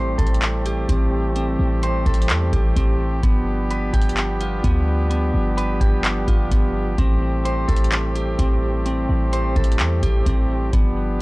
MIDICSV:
0, 0, Header, 1, 5, 480
1, 0, Start_track
1, 0, Key_signature, 0, "minor"
1, 0, Tempo, 468750
1, 1391, Time_signature, 4, 2, 24, 8
1, 11487, End_track
2, 0, Start_track
2, 0, Title_t, "Clean electric guitar"
2, 0, Program_c, 0, 27
2, 0, Note_on_c, 0, 60, 97
2, 0, Note_on_c, 0, 72, 86
2, 184, Note_on_c, 0, 69, 87
2, 675, Note_on_c, 0, 67, 81
2, 902, Note_off_c, 0, 60, 0
2, 914, Note_on_c, 0, 60, 78
2, 1380, Note_off_c, 0, 60, 0
2, 1391, Note_off_c, 0, 72, 0
2, 1392, Note_on_c, 0, 60, 89
2, 1628, Note_off_c, 0, 69, 0
2, 1875, Note_on_c, 0, 72, 93
2, 2113, Note_off_c, 0, 67, 0
2, 2114, Note_on_c, 0, 69, 80
2, 2590, Note_on_c, 0, 67, 81
2, 2817, Note_off_c, 0, 60, 0
2, 2829, Note_on_c, 0, 60, 76
2, 3306, Note_off_c, 0, 60, 0
2, 3310, Note_on_c, 0, 59, 93
2, 3311, Note_off_c, 0, 67, 0
2, 3312, Note_off_c, 0, 69, 0
2, 3313, Note_off_c, 0, 72, 0
2, 3796, Note_on_c, 0, 71, 91
2, 4029, Note_on_c, 0, 67, 88
2, 4517, Note_on_c, 0, 65, 83
2, 4740, Note_off_c, 0, 59, 0
2, 4752, Note_on_c, 0, 59, 82
2, 5213, Note_off_c, 0, 59, 0
2, 5225, Note_on_c, 0, 59, 95
2, 5234, Note_off_c, 0, 71, 0
2, 5470, Note_off_c, 0, 67, 0
2, 5709, Note_on_c, 0, 71, 93
2, 5948, Note_on_c, 0, 67, 87
2, 5954, Note_off_c, 0, 65, 0
2, 6428, Note_on_c, 0, 65, 88
2, 6660, Note_off_c, 0, 59, 0
2, 6672, Note_on_c, 0, 59, 80
2, 7149, Note_off_c, 0, 59, 0
2, 7150, Note_off_c, 0, 65, 0
2, 7150, Note_off_c, 0, 67, 0
2, 7150, Note_off_c, 0, 71, 0
2, 7153, Note_on_c, 0, 60, 98
2, 7630, Note_on_c, 0, 72, 88
2, 7864, Note_on_c, 0, 69, 88
2, 8355, Note_on_c, 0, 67, 78
2, 8582, Note_off_c, 0, 60, 0
2, 8594, Note_on_c, 0, 60, 80
2, 9060, Note_off_c, 0, 60, 0
2, 9070, Note_off_c, 0, 72, 0
2, 9072, Note_on_c, 0, 60, 95
2, 9307, Note_off_c, 0, 69, 0
2, 9554, Note_on_c, 0, 72, 88
2, 9793, Note_off_c, 0, 67, 0
2, 9794, Note_on_c, 0, 69, 86
2, 10270, Note_on_c, 0, 67, 83
2, 10496, Note_off_c, 0, 60, 0
2, 10509, Note_on_c, 0, 60, 78
2, 10986, Note_off_c, 0, 60, 0
2, 10990, Note_on_c, 0, 59, 92
2, 10991, Note_off_c, 0, 67, 0
2, 10992, Note_off_c, 0, 69, 0
2, 10993, Note_off_c, 0, 72, 0
2, 11487, Note_off_c, 0, 59, 0
2, 11487, End_track
3, 0, Start_track
3, 0, Title_t, "Brass ensemble"
3, 0, Program_c, 1, 61
3, 0, Note_on_c, 1, 52, 76
3, 0, Note_on_c, 1, 55, 68
3, 0, Note_on_c, 1, 57, 71
3, 0, Note_on_c, 1, 60, 71
3, 0, Note_on_c, 1, 67, 81
3, 3271, Note_off_c, 1, 55, 0
3, 3273, Note_off_c, 1, 52, 0
3, 3273, Note_off_c, 1, 57, 0
3, 3273, Note_off_c, 1, 60, 0
3, 3310, Note_on_c, 1, 53, 74
3, 3310, Note_on_c, 1, 55, 72
3, 3310, Note_on_c, 1, 59, 73
3, 3310, Note_on_c, 1, 62, 70
3, 7112, Note_off_c, 1, 53, 0
3, 7112, Note_off_c, 1, 55, 0
3, 7112, Note_off_c, 1, 59, 0
3, 7112, Note_off_c, 1, 62, 0
3, 7150, Note_on_c, 1, 57, 69
3, 7150, Note_on_c, 1, 60, 68
3, 7151, Note_on_c, 1, 52, 76
3, 7151, Note_on_c, 1, 55, 67
3, 10950, Note_off_c, 1, 67, 0
3, 10952, Note_off_c, 1, 57, 0
3, 10952, Note_off_c, 1, 60, 0
3, 10953, Note_off_c, 1, 52, 0
3, 10953, Note_off_c, 1, 55, 0
3, 10989, Note_on_c, 1, 62, 70
3, 10990, Note_on_c, 1, 53, 78
3, 10990, Note_on_c, 1, 55, 73
3, 10990, Note_on_c, 1, 59, 72
3, 10990, Note_on_c, 1, 67, 84
3, 11487, Note_off_c, 1, 53, 0
3, 11487, Note_off_c, 1, 55, 0
3, 11487, Note_off_c, 1, 59, 0
3, 11487, Note_off_c, 1, 62, 0
3, 11487, Note_off_c, 1, 67, 0
3, 11487, End_track
4, 0, Start_track
4, 0, Title_t, "808-style bass"
4, 0, Program_c, 2, 38
4, 0, Note_on_c, 2, 33, 110
4, 162, Note_off_c, 2, 33, 0
4, 190, Note_on_c, 2, 33, 99
4, 882, Note_off_c, 2, 33, 0
4, 910, Note_on_c, 2, 33, 100
4, 1602, Note_off_c, 2, 33, 0
4, 1631, Note_on_c, 2, 33, 107
4, 2092, Note_off_c, 2, 33, 0
4, 2110, Note_on_c, 2, 33, 98
4, 2352, Note_on_c, 2, 40, 96
4, 2367, Note_off_c, 2, 33, 0
4, 2579, Note_off_c, 2, 40, 0
4, 2590, Note_on_c, 2, 33, 105
4, 2821, Note_off_c, 2, 33, 0
4, 2830, Note_on_c, 2, 33, 102
4, 3291, Note_off_c, 2, 33, 0
4, 3311, Note_on_c, 2, 31, 114
4, 4002, Note_off_c, 2, 31, 0
4, 4030, Note_on_c, 2, 31, 104
4, 4722, Note_off_c, 2, 31, 0
4, 4751, Note_on_c, 2, 38, 101
4, 5442, Note_off_c, 2, 38, 0
4, 5470, Note_on_c, 2, 31, 110
4, 5931, Note_off_c, 2, 31, 0
4, 5950, Note_on_c, 2, 31, 99
4, 6411, Note_off_c, 2, 31, 0
4, 6430, Note_on_c, 2, 31, 97
4, 6661, Note_off_c, 2, 31, 0
4, 6670, Note_on_c, 2, 31, 108
4, 7131, Note_off_c, 2, 31, 0
4, 7150, Note_on_c, 2, 33, 115
4, 7842, Note_off_c, 2, 33, 0
4, 7870, Note_on_c, 2, 33, 99
4, 8562, Note_off_c, 2, 33, 0
4, 8590, Note_on_c, 2, 33, 101
4, 9282, Note_off_c, 2, 33, 0
4, 9310, Note_on_c, 2, 33, 109
4, 9772, Note_off_c, 2, 33, 0
4, 9790, Note_on_c, 2, 33, 104
4, 10030, Note_on_c, 2, 40, 102
4, 10046, Note_off_c, 2, 33, 0
4, 10259, Note_off_c, 2, 40, 0
4, 10270, Note_on_c, 2, 33, 103
4, 10501, Note_off_c, 2, 33, 0
4, 10510, Note_on_c, 2, 33, 101
4, 10971, Note_off_c, 2, 33, 0
4, 10990, Note_on_c, 2, 31, 110
4, 11487, Note_off_c, 2, 31, 0
4, 11487, End_track
5, 0, Start_track
5, 0, Title_t, "Drums"
5, 190, Note_on_c, 9, 36, 93
5, 191, Note_on_c, 9, 42, 60
5, 272, Note_off_c, 9, 42, 0
5, 272, Note_on_c, 9, 42, 57
5, 293, Note_off_c, 9, 36, 0
5, 352, Note_off_c, 9, 42, 0
5, 352, Note_on_c, 9, 42, 60
5, 431, Note_off_c, 9, 42, 0
5, 431, Note_on_c, 9, 39, 115
5, 431, Note_on_c, 9, 42, 70
5, 533, Note_off_c, 9, 39, 0
5, 534, Note_off_c, 9, 42, 0
5, 671, Note_on_c, 9, 42, 75
5, 774, Note_off_c, 9, 42, 0
5, 910, Note_on_c, 9, 36, 89
5, 911, Note_on_c, 9, 42, 79
5, 1013, Note_off_c, 9, 36, 0
5, 1014, Note_off_c, 9, 42, 0
5, 1390, Note_on_c, 9, 42, 71
5, 1492, Note_off_c, 9, 42, 0
5, 1874, Note_on_c, 9, 42, 76
5, 1976, Note_off_c, 9, 42, 0
5, 2110, Note_on_c, 9, 36, 94
5, 2111, Note_on_c, 9, 42, 58
5, 2190, Note_off_c, 9, 42, 0
5, 2190, Note_on_c, 9, 42, 61
5, 2213, Note_off_c, 9, 36, 0
5, 2271, Note_off_c, 9, 42, 0
5, 2271, Note_on_c, 9, 42, 63
5, 2351, Note_off_c, 9, 42, 0
5, 2351, Note_on_c, 9, 39, 112
5, 2351, Note_on_c, 9, 42, 74
5, 2453, Note_off_c, 9, 39, 0
5, 2454, Note_off_c, 9, 42, 0
5, 2590, Note_on_c, 9, 36, 94
5, 2591, Note_on_c, 9, 42, 73
5, 2692, Note_off_c, 9, 36, 0
5, 2693, Note_off_c, 9, 42, 0
5, 2830, Note_on_c, 9, 36, 85
5, 2832, Note_on_c, 9, 42, 76
5, 2933, Note_off_c, 9, 36, 0
5, 2934, Note_off_c, 9, 42, 0
5, 3311, Note_on_c, 9, 36, 121
5, 3311, Note_on_c, 9, 42, 68
5, 3413, Note_off_c, 9, 36, 0
5, 3413, Note_off_c, 9, 42, 0
5, 3794, Note_on_c, 9, 42, 77
5, 3896, Note_off_c, 9, 42, 0
5, 4030, Note_on_c, 9, 36, 96
5, 4031, Note_on_c, 9, 42, 61
5, 4112, Note_off_c, 9, 42, 0
5, 4112, Note_on_c, 9, 42, 61
5, 4133, Note_off_c, 9, 36, 0
5, 4191, Note_off_c, 9, 42, 0
5, 4191, Note_on_c, 9, 42, 63
5, 4271, Note_on_c, 9, 39, 114
5, 4272, Note_off_c, 9, 42, 0
5, 4272, Note_on_c, 9, 42, 71
5, 4374, Note_off_c, 9, 39, 0
5, 4374, Note_off_c, 9, 42, 0
5, 4512, Note_on_c, 9, 42, 72
5, 4614, Note_off_c, 9, 42, 0
5, 4750, Note_on_c, 9, 36, 91
5, 4752, Note_on_c, 9, 42, 78
5, 4853, Note_off_c, 9, 36, 0
5, 4854, Note_off_c, 9, 42, 0
5, 5230, Note_on_c, 9, 42, 65
5, 5333, Note_off_c, 9, 42, 0
5, 5714, Note_on_c, 9, 42, 75
5, 5816, Note_off_c, 9, 42, 0
5, 5950, Note_on_c, 9, 36, 94
5, 5952, Note_on_c, 9, 42, 69
5, 6053, Note_off_c, 9, 36, 0
5, 6054, Note_off_c, 9, 42, 0
5, 6191, Note_on_c, 9, 39, 117
5, 6191, Note_on_c, 9, 42, 72
5, 6293, Note_off_c, 9, 39, 0
5, 6294, Note_off_c, 9, 42, 0
5, 6430, Note_on_c, 9, 36, 96
5, 6430, Note_on_c, 9, 42, 74
5, 6532, Note_off_c, 9, 36, 0
5, 6533, Note_off_c, 9, 42, 0
5, 6670, Note_on_c, 9, 36, 91
5, 6671, Note_on_c, 9, 42, 76
5, 6773, Note_off_c, 9, 36, 0
5, 6774, Note_off_c, 9, 42, 0
5, 7150, Note_on_c, 9, 36, 116
5, 7150, Note_on_c, 9, 42, 65
5, 7252, Note_off_c, 9, 42, 0
5, 7253, Note_off_c, 9, 36, 0
5, 7633, Note_on_c, 9, 42, 74
5, 7736, Note_off_c, 9, 42, 0
5, 7870, Note_on_c, 9, 36, 95
5, 7870, Note_on_c, 9, 42, 61
5, 7950, Note_off_c, 9, 42, 0
5, 7950, Note_on_c, 9, 42, 62
5, 7972, Note_off_c, 9, 36, 0
5, 8031, Note_off_c, 9, 42, 0
5, 8031, Note_on_c, 9, 42, 60
5, 8110, Note_off_c, 9, 42, 0
5, 8110, Note_on_c, 9, 39, 117
5, 8110, Note_on_c, 9, 42, 72
5, 8212, Note_off_c, 9, 39, 0
5, 8212, Note_off_c, 9, 42, 0
5, 8351, Note_on_c, 9, 42, 73
5, 8453, Note_off_c, 9, 42, 0
5, 8590, Note_on_c, 9, 36, 86
5, 8591, Note_on_c, 9, 42, 77
5, 8692, Note_off_c, 9, 36, 0
5, 8693, Note_off_c, 9, 42, 0
5, 9070, Note_on_c, 9, 42, 71
5, 9173, Note_off_c, 9, 42, 0
5, 9553, Note_on_c, 9, 42, 80
5, 9656, Note_off_c, 9, 42, 0
5, 9790, Note_on_c, 9, 36, 91
5, 9791, Note_on_c, 9, 42, 58
5, 9871, Note_off_c, 9, 42, 0
5, 9871, Note_on_c, 9, 42, 58
5, 9892, Note_off_c, 9, 36, 0
5, 9951, Note_off_c, 9, 42, 0
5, 9951, Note_on_c, 9, 42, 63
5, 10030, Note_off_c, 9, 42, 0
5, 10030, Note_on_c, 9, 39, 115
5, 10030, Note_on_c, 9, 42, 72
5, 10133, Note_off_c, 9, 39, 0
5, 10133, Note_off_c, 9, 42, 0
5, 10270, Note_on_c, 9, 36, 92
5, 10271, Note_on_c, 9, 42, 74
5, 10372, Note_off_c, 9, 36, 0
5, 10373, Note_off_c, 9, 42, 0
5, 10510, Note_on_c, 9, 36, 86
5, 10511, Note_on_c, 9, 42, 82
5, 10612, Note_off_c, 9, 36, 0
5, 10614, Note_off_c, 9, 42, 0
5, 10990, Note_on_c, 9, 36, 122
5, 10990, Note_on_c, 9, 42, 69
5, 11093, Note_off_c, 9, 36, 0
5, 11093, Note_off_c, 9, 42, 0
5, 11487, End_track
0, 0, End_of_file